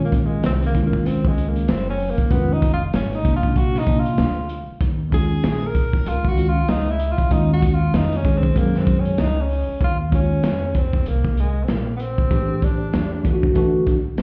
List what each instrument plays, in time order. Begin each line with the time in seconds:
Already playing: upright bass A#1, tine electric piano D#3 G#3 C#4 F4
0.04 tenor saxophone A#3
0.12 kick, closed hi-hat
0.25 tenor saxophone G#3
0.43 upright bass C2, tenor saxophone C4, snare, closed hi-hat
0.62 tenor saxophone A#3, closed hi-hat
0.72 tine electric piano D#3 G#3 C#4 E4, kick, closed hi-hat
0.83 tenor saxophone A#3, tine electric piano F4
0.93 kick
1.06 upright bass C#2, tenor saxophone C4, closed hi-hat
1.25 tenor saxophone G#3, kick
1.38 closed hi-hat
1.48 tenor saxophone A#3
1.56 closed hi-hat
1.68 upright bass F#1, tenor saxophone C4, snare, closed hi-hat
1.90 tenor saxophone C#4
1.99 open hi-hat
2.10 tenor saxophone A#3
2.18 muted upright bass stroke, kick, closed hi-hat
2.29 upright bass F1, tine electric piano D#3 G#3 C#4, tenor saxophone B3, kick, closed hi-hat
2.33 tine electric piano F4
2.53 tenor saxophone D#4
2.62 kick, closed hi-hat
2.73 tenor saxophone F4
2.93 upright bass G#1, tenor saxophone C#4, snare, closed hi-hat
3.12 tenor saxophone D#4, closed hi-hat
3.23 tine electric piano C3 F3 A#3 C#4, kick, closed hi-hat
3.33 tine electric piano D4, tenor saxophone F4
3.43 kick
3.56 upright bass A#1, tenor saxophone F#4, kick, closed hi-hat
3.74 tenor saxophone D#4, snare
3.85 tine electric piano C3 F3 A#3 D4, kick, closed hi-hat
3.99 tenor saxophone F4
4.05 closed hi-hat
4.18 upright bass D2, snare, closed hi-hat
4.49 closed hi-hat
4.69 muted upright bass stroke
4.81 upright bass D#2, kick, closed hi-hat
5.10 tine electric piano D#3 G#3 C#4 F4, tenor saxophone G#4, kick, closed hi-hat
5.44 upright bass A#1, snare, closed hi-hat
5.67 tenor saxophone A#4
5.75 kick, closed hi-hat
5.93 kick
6.06 upright bass C#2, tenor saxophone F4, closed hi-hat
6.25 tenor saxophone F#4, kick
6.34 tine electric piano D#3 G#3 C#4, closed hi-hat
6.38 tine electric piano F4
6.49 tenor saxophone F4
6.68 upright bass C#2, tenor saxophone D#4, snare, closed hi-hat
6.90 tenor saxophone E4
6.99 closed hi-hat
7.12 tenor saxophone F4
7.18 muted upright bass stroke, kick, closed hi-hat
7.28 upright bass D#2, tine electric piano D#3 G#3 C#4 F4, tenor saxophone D#4, kick, closed hi-hat
7.53 tenor saxophone F#4
7.62 kick, closed hi-hat
7.74 tenor saxophone F4
7.94 upright bass F2, tenor saxophone D#4, snare, closed hi-hat
8.13 tenor saxophone C#4, closed hi-hat
8.22 tine electric piano D#3 G#3 C#4 G#4, kick, closed hi-hat
8.38 tenor saxophone C4
8.43 kick
8.56 upright bass F#2, tenor saxophone A#3, kick, closed hi-hat
8.74 snare
8.79 tenor saxophone C4
8.87 kick, closed hi-hat
9.00 tenor saxophone C#4
9.05 closed hi-hat
9.18 upright bass C#2, tenor saxophone D#4, snare, closed hi-hat
9.41 tenor saxophone C#4
9.49 open hi-hat
9.69 muted upright bass stroke
9.81 upright bass D#2, tenor saxophone F4, kick, closed hi-hat
10.10 tine electric piano D#3 G#3 C#4, kick, closed hi-hat
10.14 tenor saxophone C#4, tine electric piano F4
10.43 upright bass F2, snare, closed hi-hat
10.75 tenor saxophone C4, kick, closed hi-hat
10.93 kick
11.06 upright bass C2, tenor saxophone A#3, closed hi-hat
11.25 kick
11.37 tenor saxophone G#3, closed hi-hat
11.64 tenor saxophone C4, closed hi-hat
11.68 upright bass A#1, tenor saxophone A#3, snare
11.96 tenor saxophone B3, closed hi-hat
12.01 tenor saxophone C4
12.18 kick
12.29 upright bass A1, tine electric piano E3 A3 D4 G4, kick, closed hi-hat
12.62 tenor saxophone D4, kick, closed hi-hat
12.93 upright bass E2, snare, closed hi-hat
13.23 tine electric piano E3 A3 D4, kick, closed hi-hat
13.27 tine electric piano F4
13.33 tine electric piano F#4
13.43 kick
13.53 upright bass D2, tine electric piano E3 A3 D4, kick, closed hi-hat
13.57 tine electric piano F#4
13.87 kick, closed hi-hat
14.18 upright bass D2, snare, closed hi-hat